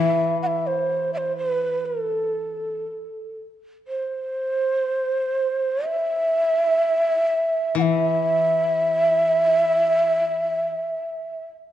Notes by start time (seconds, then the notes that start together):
Already playing: E3 B3 E4 F#4 B4 E5
0.42 F#5
0.47 E5
0.67 C5
1.14 C5 E5
1.37 B4
1.85 A4
3.88 C5
5.86 E5
7.75 E3 F#5
7.82 E5